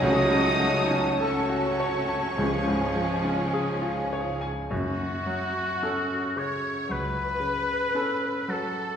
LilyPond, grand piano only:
\new Staff \with { instrumentName = "Grand piano" } { \time 4/4 \key fis \minor \tempo 4 = 53 cis,16 cis16 fis16 cis'16 a'16 fis'16 cis''16 a''16 cis,16 gis,16 eis16 cis'16 gis'16 eis'16 cis''16 gis''16 | fis,8 fis8 <cis' a'>8 cis8 fis8 cis8 <cis' a'>8 fis8 | }